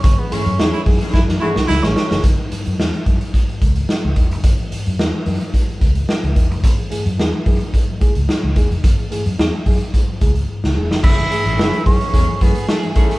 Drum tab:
CC |----------------|----------------|----------------|----------------|
HH |x-xx--ox--------|x-xx-xxxxxxx--xx|xxxx--oxxxxx-xxx|xxxx--oxx-xx--xx|
SD |----o---oo-ooooo|----o-------o---|----o-------o---|----o-------o---|
BD |o-----o-o-------|o-----o-o-o---o-|o-------o-o---o-|o-----o-o-o---o-|

CC |----------------|x---------------|
HH |xxxx--oxx-xx----|--xx-xoxx-xx-xxx|
SD |----o--------o-o|----o-------o--o|
BD |o-----o-o-o-----|o-----o-o-o---o-|